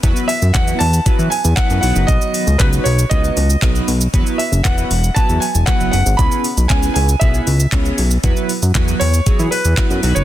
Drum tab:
HH |x-o-x-o-x-o-x-o-|x-o-x-o-x-o-x-o-|x-o-x-o-x-o-x-o-|x-o-x-o-x-o-x-o-|
SH |xxxxxxxxxxxxxxxx|xxxxxxxxxxxxxxxx|xxxxxxxxxxxxxxxx|xxxxxxxxxxxxxxxx|
CP |----x-------x---|----x-------x---|----x-------x---|----x-------x---|
BD |o---o---o---o---|o---o---o---o---|o---o---o---o---|o---o---o---o---|

HH |x-o-x-o-x-o-x-o-|
SH |xxxxxxxxxxxxxxxx|
CP |----x-------x---|
BD |o---o---o---o---|